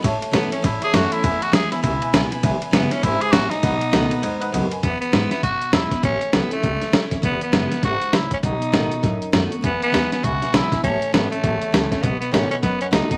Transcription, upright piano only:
X:1
M:4/4
L:1/8
Q:"Swing" 1/4=200
K:E
V:1 name="Upright piano"
[cea] [cea] [ce] [cea] [cea] [cea] [cea] [cea] | [Beg] [Bg] [Beg] [Beg] [Beg] [Beg] [Beg] [Beg] | [Beg] [Beg] [Beg] [Beg] [Beg] [Beg] [eg] [Beg] | [Bdf] [Bdf] [Bdf] [Bdf] [Bdf] [Bdf] [Bdf] [Bdg] |
z8 | z8 | z8 | z8 |
[Beg] [eg] [Beg] [Beg] [Beg] [Beg] [eg] [Beg] | [cea] z [cea] [cea] [cea] [cea] [ca] [cea] | [Bdf] [Bdf] [Bdf] [Bdf] [Bdf] [Bdf] [Bdf] [Bdf] |]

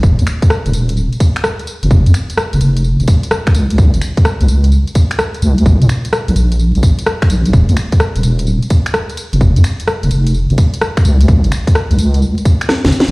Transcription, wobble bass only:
X:1
M:4/4
L:1/16
Q:"Swing 16ths" 1/4=128
K:Dblyd
V:1 name="Wobble bass" clef=bass
E,,, E,, z3 E,,, E,,,3 z6 F,,, | F,,, F,, z3 F,,, F,,,3 F,,, z4 D,,2 | D,, A,,, z3 D,, D,,3 z4 z D,,2 | B,,, B,, z3 B,,, B,,,3 B,,, z4 B,,,2 |
E,,, E,, z3 E,,, E,,,3 z6 F,,, | F,,, F,, z3 F,,, F,,,3 F,,, z4 D,,2 | D,, A,,, z3 D,, D,,3 z4 A,,, z A,,, |]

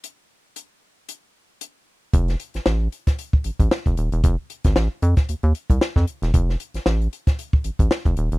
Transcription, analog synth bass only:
X:1
M:4/4
L:1/16
Q:"Swing 16ths" 1/4=114
K:Fmix
V:1 name="Analog synth bass" clef=bass
z16 | F,,,2 z A,,, A,,,2 z4 A,,, A,,, z F,,, E,,, =E,,, | F,,, z2 _A,,, =A,,, z F,, z E,, E,, z C,, z F,, z =E,,, | F,,,2 z A,,, A,,,2 z4 A,,, A,,, z F,,, E,,, =E,,, |]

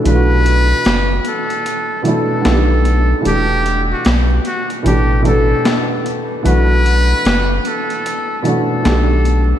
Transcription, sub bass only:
X:1
M:4/4
L:1/8
Q:"Swing 16ths" 1/4=75
K:Bm
V:1 name="Sub bass" clef=bass
B,,,2 F,,, z3 B,,,2 | E,,,2 B,,, z A,,,2 z2 | B,,,2 F,,, z3 B,,,2 |]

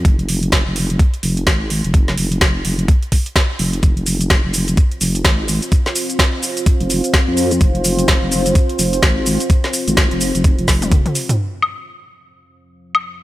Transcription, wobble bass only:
X:1
M:4/4
L:1/16
Q:"Swing 16ths" 1/4=127
K:Fm
V:1 name="Wobble bass" clef=bass
F,,,4 F,,, F,,,3 z2 F,,,2 A,,,3 F,,,- | F,,,2 F,,,2 F,,,2 F,,,2 z6 F,,,2 | F,,,4 F,,, F,,,3 z2 F,,,2 A,,,3 z | z8 z F,,,2 z2 F,,3 |
F,,,4 F,,, F,,,3 z2 F,,,2 A,,,3 z | z3 A,,,2 F,,,2 F,,,2 F,,,4 z3 | z16 |]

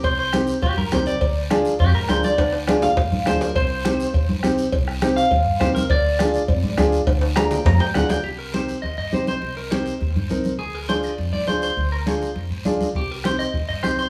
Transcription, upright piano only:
X:1
M:4/4
L:1/8
Q:1/4=205
K:Cm
V:1 name="Upright piano"
z2 [CEG] z3 [CEG] z | z2 [DFA] z3 [DFA] z | z2 [DFA] z3 [DFA] z | z2 [CEG] z3 [CEG] z |
z2 [CEG] z3 [CEG] z | z2 [DFA] z3 [DFA] z | z2 [DFA] z3 [DFA] z | z2 [CEG] z3 [CEG] z |
z2 [CEG] z3 [CEB] z | z2 [DFA] z3 [DFA] z | z2 [DFA] z3 [DFA] z | z2 [CEG] z3 [CEG] z |]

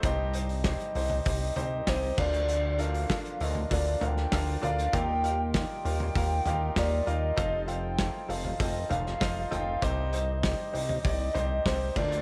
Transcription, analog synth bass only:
X:1
M:4/4
L:1/16
Q:1/4=98
K:Cdor
V:1 name="Analog synth bass" clef=bass
C,,4- C,, z C,,2 C,,2 C,,2 C,,2 D,,2- | D,,4- D,, z D,,2 D,,2 D,,2 D,,2 D,,2 | E,,4- E,, z E,,2 E,,2 E,,2 E,,2 E,,2 | F,,,4- F,,, z F,,,2 F,,,2 F,,,2 F,,,2 F,,,2 |
C,,4- C,, z C,,2 C,,2 C,,2 C,,2 D,,2 |]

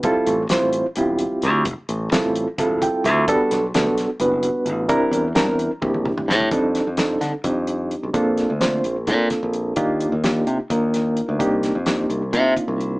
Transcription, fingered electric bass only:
X:1
M:7/8
L:1/16
Q:1/4=129
K:F
V:1 name="Fingered electric bass" clef=bass
F,,, z A,,,2 C,, A,,,2 z E,,,3 z D,,2 | F,,, z A,,,2 C,, A,,,2 z E,,,3 z D,,2 | G,,, z =B,,,2 D,, B,,,2 z ^F,,,3 z A,,,2 | C,, z E,,2 G,, E,,2 z B,,,3 z A,,2 |
[K:Fmix] F,,3 F,,3 D, z F,,4- F,, =B,,, | B,,,3 D,,3 B,,,2 B,,2 z B,,,3 | E,,3 E,,3 C, z E,,4- E,, D,, | C,,3 F,,3 C,,2 C,2 z C,,3 |]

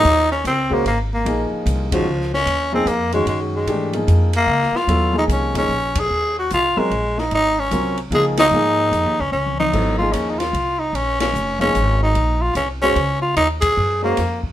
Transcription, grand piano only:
X:1
M:3/4
L:1/8
Q:"Swing" 1/4=149
K:Ebdor
V:1 name="Grand piano"
z3 [A,DGc] z2 | [F,B,EA]3 [E,A,DG] z2 | z [F,B,EA] z [E,A,DG]3 | [_F,=A,=D=G] [=F,B,E_A]2 z3 |
[G,_C_F=A] [=F,B,E_A]2 [F,B,EA] z2 | z3 [G,CFB] z2 | z2 [G,CFB] z [F,B,EA] z | [F,B,EA]3 z3 |
[G,_C_F=A] [=F,B,E_A]2 z3 | z3 [F,B,EA] z2 | z3 [A,DGc] z2 | z3 [A,DGc] z2 |]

